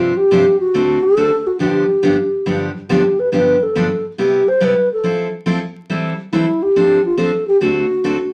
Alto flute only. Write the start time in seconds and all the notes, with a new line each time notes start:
Already playing: F4
0.17 G4
0.60 F#4
1.03 A4
1.47 F#4
1.61 G4
2.89 G4
3.19 B4
3.33 B4
3.63 A4
4.19 G4
4.48 C5
4.65 B4
4.93 A4
6.33 E4
6.63 G4
7.05 F4
7.18 A4
7.48 G4
7.61 F#4